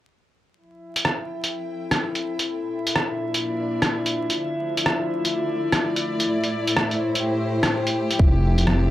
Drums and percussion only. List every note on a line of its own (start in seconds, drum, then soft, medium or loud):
0.96 closed hi-hat medium
1.05 cross-stick medium
1.44 closed hi-hat medium
1.91 cross-stick medium
1.91 closed hi-hat medium
2.15 closed hi-hat soft
2.39 closed hi-hat medium
2.87 closed hi-hat medium
2.96 cross-stick medium
3.34 closed hi-hat medium
3.82 cross-stick medium
3.82 closed hi-hat medium
4.06 closed hi-hat soft
4.30 closed hi-hat medium
4.77 closed hi-hat medium
4.86 cross-stick loud
5.25 closed hi-hat medium
5.72 cross-stick loud
5.72 closed hi-hat medium
5.96 closed hi-hat soft
6.20 closed hi-hat medium
6.44 closed hi-hat soft
6.68 closed hi-hat medium
6.77 cross-stick loud
6.91 closed hi-hat soft
7.15 closed hi-hat soft
7.63 cross-stick loud
7.63 closed hi-hat medium
7.87 closed hi-hat soft
8.11 closed hi-hat medium
8.19 kick loud
8.58 closed hi-hat medium
8.67 cross-stick medium
8.67 low bongo soft